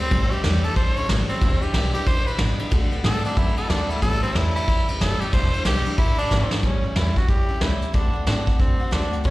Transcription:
0.00 G3 C4 C#4 E4
0.11 A1 A2 E3 G3 C#4 E4, kick, ride
0.31 G3 C#4 E4 G4, muted upright bass stroke, ride
0.44 E2 A2 E3 G3 C#4 E4, snare, ride
0.64 G3 C#4 E4 A4, muted upright bass stroke, ride
0.76 C#2 E3 G3 C#4 E4 C5, kick, ride
0.96 A1 G3 C#4 E4 C#5, ride
1.09 A1 A2 E3 G3 C#4 E4, snare, ride
1.29 G3 C4 C#4 E4, muted upright bass stroke, ride
1.41 E1 E2 B2 E3 G#3 D4 E4, kick, ride
1.62 E3 G#3 D4 E4 G4, muted upright bass stroke, ride
1.74 B1 E2 B2 E3 G#3 D4 E4, snare, ride
1.94 E3 G#3 D4 E4 G4, muted upright bass stroke, ride
2.06 C#2 E3 G#3 D4 E4 C5, kick, ride
2.26 B1 E3 G#3 D4 E4 B4, ride
2.38 A1 E2 B2 E3 G#3 D4 E4, snare, ride
2.59 E3 G#3 D4 E4, muted upright bass stroke, ride
2.71 D2 D3 A3 C4 F#4, kick, ride
2.91 A3 C4 F#4, muted upright bass stroke, ride
3.04 A2 D3 A3 C4 F#4 A4, snare, ride
3.24 A3 C4 D4 F#4, muted upright bass stroke, ride
3.36 F#2 D3 A3 C4 E4 F#4, kick, ride
3.57 D2 A3 C4 F#4 A4, ride
3.69 D2 D3 A3 C4 D4 F#4, snare, ride
3.89 A3 C4 E4 F#4, muted upright bass stroke, ride
4.02 A1 A2 E3 G3 C#4 E4 A4, kick, ride
4.22 G3 C4 C#4 E4, muted upright bass stroke, ride
4.35 E2 A2 E3 G3 C#4 E4, snare, ride
4.55 G3 C#4 E4, muted upright bass stroke, ride
4.67 F#2 E3 G3 C#4 E4, kick, ride
4.88 E2 G3 C#4 E4, ride
5.00 F#1 A2 E3 G3 C#4 E4 A4, snare, ride
5.21 G3 C#4 E4 G4, muted upright bass stroke, ride
5.33 E1 E2 B2 E3 G#3 D4 E4 C5, kick, ride
5.53 E3 G#3 D4 E4, ride
5.65 B1 E2 B2 E3 G#3 D4 E4 G4, snare, ride
5.86 E3 G#3 D4 E4, muted upright bass stroke, ride
5.98 G#1 E3 G#3 D4 E4, kick, ride
6.18 E1 E3 G#3 D4 E4, ride
6.31 G#1 E2 B2 E3 G#3 D4 E4, snare
6.51 E3 G#3 D4 E4, snare
6.63 A1 A2 E3 G3 C#4 E4, kick, closed hi-hat
6.83 G3 C#4 E4, muted upright bass stroke
6.95 E2 A2 E3 G3 C#4 E4, snare, closed hi-hat
7.15 G3 C#4 E4 F#4, kick, closed hi-hat
7.28 F#2 E3 G3 C#4 E4 G4, kick, closed hi-hat
7.49 E2 G3 C#4 E4
7.61 C#2 A2 E3 G3 C#4 E4, snare, closed hi-hat
7.81 G3 C#4 E4, muted upright bass stroke, closed hi-hat
7.93 D2 D3 A3 C4 D4 F#4, kick, closed hi-hat
8.13 A3 C4 F#4, muted upright bass stroke
8.27 A2 D3 A3 C4 D4 F#4, snare, closed hi-hat
8.46 A3 C4 F#4, kick, closed hi-hat
8.59 F#2 D3 A3 C4 F#4, kick, closed hi-hat
8.80 D2 A3 C4 F#4
8.91 D2 D3 A3 C4 D4 F#4, snare, closed hi-hat
9.11 A3 C4 F#4, muted upright bass stroke, closed hi-hat
9.24 A1 A2 E3 G3 C#4 E4, kick, closed hi-hat

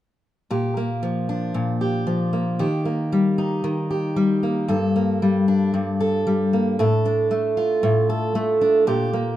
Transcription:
0.51 A#2 G4
0.77 A#3
1.03 F3
1.29 D4
1.54 A#2
1.81 G4
2.07 F3
2.33 A#3
2.59 D#3 G4
2.85 A#3
3.12 G3
3.38 D#4
3.64 D#3
3.91 G4
4.16 G3
4.43 A#3
4.68 G2 A4
4.96 A#3
5.22 G3
5.48 D4
5.74 G2
6.00 A4
6.27 G3
6.53 A#3
6.79 A2 A4
7.05 D4
7.31 A3
7.57 F4
7.83 A2
8.09 A4
8.35 A3
8.61 D4
8.87 A#2 G4
9.13 A#3

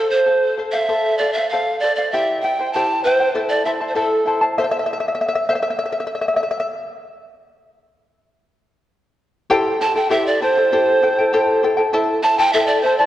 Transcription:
Already playing: A4 C5
0.10 C5 F5
0.26 A4 C5 F5
0.57 A4 C5 F5
0.71 C5 E5 F5
0.89 A4 C5
1.18 A4 C5 D5 F5
1.33 E5
1.37 C5 F5
1.49 A4 F5
1.53 C5 F5
1.80 A4 D5
1.84 C5 F5
1.95 C5 D5 F5
2.11 E4 G4 C5 E5 G5
2.41 E4 C5 E5 G5
2.59 E4 C5 G5
2.73 E4 G4 C5 E5 G5 A5
3.04 E4 C5 E5 G5
3.20 E4 C5 G5
3.35 E4 A4 C5 E5 A5
3.49 D5
3.65 E4 C5 E5 A5
3.81 E4 C5 A5
3.89 C5
3.95 E4 A4 C5 E5 A5
4.26 E4 C5 E5 A5
4.41 E4 C5 A5
4.58 C5 E5
4.64 E5
4.71 E5
4.79 E5
4.86 E5
4.93 E5
5.00 E5
5.08 E5
5.15 E5
5.21 E5
5.28 E5
5.35 E5
5.49 C5 E5
5.55 E5
5.63 E5
5.70 E5
5.79 E5
5.86 E5
5.92 E5
6.00 E5
6.07 E5
6.15 E5
6.21 E5
6.28 E5
6.36 E5
6.43 E5
6.51 E5
6.60 E5
9.50 E4 G4 A4 C5 G5
9.80 E4 A4 C5 G5 A5
9.95 E4 A4 G5
10.10 E4 G4 A4 C5 E5 G5
10.26 D5
10.41 E4 A4 C5 G5
10.57 E4 A4 G5
10.72 E4 G4 A4 C5 G5
11.02 E4 A4 C5 G5
11.19 E4 A4 G5
11.33 E4 G4 A4 C5 G5
11.63 E4 A4 C5 G5
11.77 E4 A4 G5
11.93 E4 A4 C5 E5 A5
12.23 E4 C5 E5 A5
12.39 E4 C5 G5 A5
12.53 E4 A4 C5 E5 A5
12.67 D5
12.82 E4 C5 E5
12.86 A5
12.98 E4 C5 D5 A5

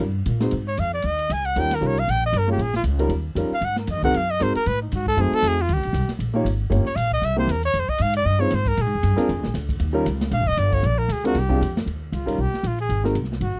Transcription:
0.00 G2
0.26 A#2, hi-hat pedal, ride
0.40 G#3 C4 D#4 F#4 C5, snare, ride
0.51 G#2, ride
0.68 C#5
0.77 F2 F5, hi-hat pedal, ride
0.94 D5
1.02 D#2, ride
1.06 D#5
1.19 ride
1.30 C#2 G#5, hi-hat pedal, ride
1.45 F#5, ride
1.56 D#2 G3 C#4 D#4 F4 A#4 G5, ride
1.71 snare, ride
1.75 A#4
1.81 C2 G3 C#4 D#4 F4 A#4, hi-hat pedal
1.87 C#5
1.97 F5, ride
2.08 A#1 G5, ride
2.26 D#5
2.33 G1, hi-hat pedal, ride
2.38 A#4
2.47 G#3 A#3 C#4 F4 C#5
2.52 G4
2.58 A#1, ride
2.62 G#4
2.74 F4, snare
2.84 C#2, hi-hat pedal, ride
2.99 G3 C#4 D#4 F4 A#4, ride
3.09 D#2, ride
3.35 F2 G3 C#4 D#4 F4 A#4, hi-hat pedal, ride
3.51 F5, muted upright bass stroke
3.61 G#2 F#5, ride
3.76 A#4, snare
3.87 F2 D#5, hi-hat pedal, ride
3.97 D#2
4.03 C2 G#3 C4 D#4 F#4 A#4 F#5, kick, ride
4.14 F#2 F5, ride
4.31 D#5
4.40 G#2 G#3 C4 D#4 F#4 A#4 C5, hi-hat pedal, ride
4.55 A#4, muted upright bass stroke, ride
4.66 A2 B4, ride
4.82 D#4
4.92 G#2 F#4, hi-hat pedal, ride
5.07 A4, kick
5.17 F#2 A3 C4 D#4 F#4 C5, ride
5.21 G#4
5.32 A4, muted upright bass stroke, ride
5.42 F2, hi-hat pedal, ride
5.48 G#4
5.59 F4, ride
5.69 D#2, ride
5.73 C#2 G4
5.83 A#1, ride
5.93 C2, hi-hat pedal, ride
6.09 snare, ride
6.19 A#1, ride
6.34 A#3 D#4 F4 G4 C#5
6.44 G#1, hi-hat pedal, ride
6.70 G1 A#3 C#4 F4 G4 C#5, ride
6.85 C#5, muted upright bass stroke, ride
6.96 A#1 F5, hi-hat pedal, ride
7.12 D#5, kick
7.22 C2 E5, ride
7.37 A#3 C4 E4 G4 C5
7.47 E2 A#4, hi-hat pedal, ride
7.63 C#5, ride
7.74 F2, ride
7.79 C5
7.88 D#5, muted upright bass stroke, kick
7.98 G#2 F5, hi-hat pedal, ride
8.14 D5, ride
8.25 G2 D#5
8.39 G#3 C4 D#4 F4 C5 C#5
8.50 G#2, snare, hi-hat pedal, ride
8.55 C5
8.66 A#4, kick, ride
8.77 A#2, ride
8.82 G#4
8.86 G#2
8.94 F2
9.03 G2, hi-hat pedal, ride
9.16 G#3 C4 D4 F4 A#4, muted upright bass stroke, snare, ride
9.29 F2, ride
9.37 D2
9.44 A#1, snare
9.54 D2, snare, hi-hat pedal, ride
9.69 kick, ride
9.80 D#2, ride
9.93 G3 C#4 D#4 F4 A#4
10.06 C#2, hi-hat pedal, ride
10.21 snare, ride
10.31 A#1 F5, ride
10.40 G1
10.46 D#1 D#5, kick
10.57 G1 D5, hi-hat pedal, ride
10.72 C#5, kick, ride
10.83 A#1 D5, ride
10.98 A#4
11.09 D2 G#4, hi-hat pedal, ride
11.24 G#3 C4 D4 F4 F#4 A#4, ride
11.35 C2, snare, ride
11.39 G4
11.49 G#3 C4 D4 F4 G4, kick
11.61 F2, hi-hat pedal, ride
11.77 snare, ride
11.86 D#2, ride
12.12 C#2 F4, hi-hat pedal, ride
12.26 G3 C#4 D#4 F4 A#4, kick, ride
12.38 C2 G4
12.52 muted upright bass stroke, snare
12.63 A#1 F4, hi-hat pedal, ride
12.78 G#4, ride
12.89 G#1, ride
13.04 G#3 C4 D#4 F#4 A#4, snare
13.15 C2, hi-hat pedal, ride
13.24 snare
13.32 snare
13.41 G#1 F#4, ride
13.55 muted upright bass stroke

